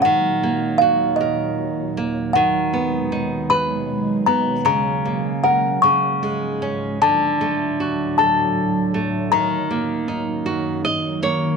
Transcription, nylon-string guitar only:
\new Staff \with { instrumentName = "Nylon-string guitar" } { \time 6/8 \key dis \minor \tempo 4. = 52 << { r2. | r2. | r2. | r2. |
r2 dis''8 cis''8 | } \\ { dis8 ais8 fis'8 ais'4 ais8 | dis8 b8 dis'8 b'4 b8 | cis8 ais8 ais'8 cis8 gis8 cis'8 | d8 a8 fis'8 a'4 a8 |
dis8 ais8 dis'8 fis'4 ais8 | } >> }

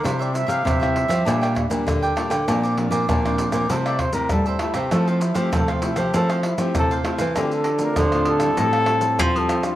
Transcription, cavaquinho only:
\new Staff \with { instrumentName = "Cavaquinho" } { \time 4/4 \key f \major \tempo 4 = 98 <e' g' c'' e''>16 <g' c'' e''>16 r16 <g' c'' e''>16 <e' g' c'' e''>16 <g' c'' e''>8 <g' c'' e''>16 <d' bes' d'' g''>16 <bes' d'' g''>16 r8. <bes' d'' g''>16 <d' bes' d'' g''>16 <bes' d'' g''>16 | <d' bes' c'' d''>16 <bes' c'' d''>16 r16 <bes' c'' d''>16 <d' bes' c'' d''>16 <bes' c'' d''>8 <bes' c'' d''>16 <e' a' c'' e''>16 <a' c'' e''>16 r8. <a' c'' e''>16 <e' a' c'' e''>16 <a' c'' e''>16 | <e' a' c'' f''>16 <a' c'' f''>16 r16 <a' c'' f''>16 <e' a' c'' f''>16 <a' c'' f''>8 <a' c'' f''>16 <e' a' c'' f''>16 <a' c'' f''>16 r8. <a' c'' f''>16 <e' a' c'' f''>16 <a' c'' f''>16 | \key a \phrygian r1 | }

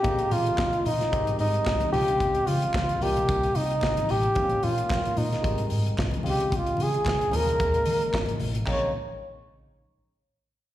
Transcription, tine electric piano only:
\new Staff \with { instrumentName = "Tine electric piano" } { \clef bass \time 4/4 \key bes \dorian \tempo 4 = 112 <des aes bes c' ees'>4. r8 <ees g aes c' g'>4. <des f aes c' f'>8~ | <des f aes c' f'>4 r8 <c ees g bes ees'>4. r4 | <ees aes bes c' des'>4. r8 <c ees g aes ees'>4. <des f aes c' f'>8~ | <des f aes c' f'>4 r8 <des f aes bes ees'>4. r4 |
<des aes bes c' ees'>8 r2. r8 | }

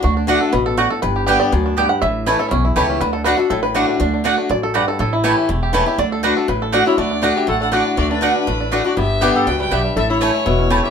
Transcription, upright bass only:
\new Staff \with { instrumentName = "Upright bass" } { \clef bass \time 4/4 \key d \major \tempo 4 = 242 d,2 a,,2 | g,,2 d,2 | a,,2 b,,4 cis,4 | d,2 a,,2 |
d,2 a,,2 | a,,2 e,,2 | d,2 a,,2 | d,2 a,,2 |
d,2 a,,2 | g,,2 cis,4 b,,4 | a,,2 e,,2 | }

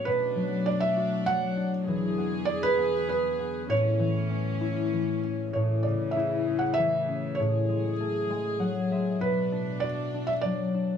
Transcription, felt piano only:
\new Staff \with { instrumentName = "Felt piano" } { \time 3/4 \key a \major \tempo 4 = 98 b'4 d''16 e''8. fis''8. r16 | r4 d''16 b'8. b'4 | cis''2~ cis''8 r8 | cis''8 d''8 e''8. fis''16 e''4 |
cis''4 r2 | b'4 d''8. e''16 d''4 | }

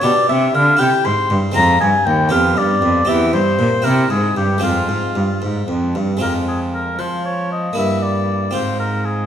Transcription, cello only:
\new Staff \with { instrumentName = "Cello" } { \clef bass \time 6/8 \key f \minor \tempo 4. = 78 b,8 c8 d8 c8 aes,8 g,8 | f,8 g,8 ees,8 f,8 g,8 f,8 | e,8 g,8 bes,8 c8 aes,8 g,8 | f,8 aes,8 g,8 aes,8 f,8 g,8 |
f,4. f4. | g,4. aes,4. | }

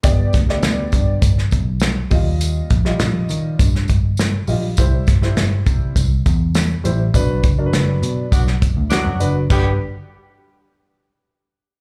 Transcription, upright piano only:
\new Staff \with { instrumentName = "Upright piano" } { \time 4/4 \key g \major \tempo 4 = 102 <b g' d''>8 r16 <a b g' d''>4~ <a b g' d''>16 r4. <g f' ees''>8~ | <g f' ees''>8 r16 <g f' ees''>4~ <g f' ees''>16 r4. <g f' ees''>16 r16 | <g e' c''>8 r16 <g e' c''>4~ <g e' c''>16 r4. <g e' c''>16 r16 | <fis d' b'>8 r16 <fis d' bes' b'>4~ <fis d' bes' b'>16 r4. <fis d' b'>16 r16 |
<g d' b'>8 r2. r8 | }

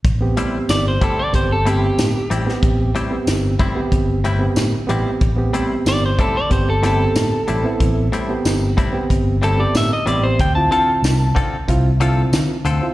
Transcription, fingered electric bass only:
\new Staff \with { instrumentName = "Fingered electric bass" } { \clef bass \time 4/4 \key a \minor \tempo 4 = 93 a,,8 r8 g,,8 r8 g,,4 a,16 r16 a,,16 r16 | a,,8 r8 g,,8 r8 g,,4 a,16 r16 a,,16 r16 | a,,8 r8 g,,8 r8 g,,4 a,16 r16 a,,16 r16 | a,,8 r8 g,,8 r8 g,,4 a,16 r16 a,,8 |
d,8 r8 c,8 r8 c,4 d16 r16 d,16 r16 | }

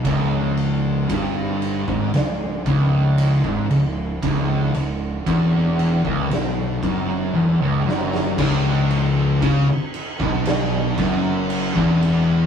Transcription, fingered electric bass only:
\new Staff \with { instrumentName = "Fingered electric bass" } { \clef bass \time 4/4 \key cis \minor \tempo 4 = 58 cis,,4 g,,8. gis,,16 cis,,8 cis,,8. gis,,16 cis,,8 | cis,,8 cis,,8 e,,8. cis,,16 b,,8 fis,,8 e,,16 cis,,16 fis,,8 | cis,,4 cis,16 r8 b,,8. fis,,8. e,,8. | }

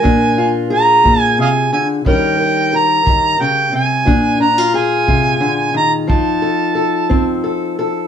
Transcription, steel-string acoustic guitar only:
\new Staff \with { instrumentName = "Steel-string acoustic guitar" } { \time 12/8 \key bes \mixolydian \tempo 4. = 59 << { d'8 f'8 aes'2 <g des' bes'>8 bes'8 bes'2 | d'8 d'16 f'16 aes'2 ees'8 a'8 a'4 a'8 a'8 | } \\ { bes,4. bes,8 c8 d8 ees4. ees8 des8 c8 | bes,4. c8 d8 ees8 f4. c'4. | } >> }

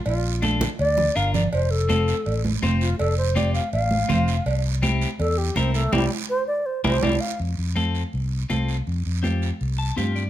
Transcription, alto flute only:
\new Staff \with { instrumentName = "Alto flute" } { \time 4/4 \key f \major \tempo 4 = 164 f'4 r4 d''4 f''8 d''8 | c''8 a'2 r4 f'8 | a'8 c''8 d''8 f''8 f''2 | r2 a'8 g'8 c'8 a8 |
g8 r8 c''8 d''8 c''8 c''8 d''8 f''8 | r1 | r1 | }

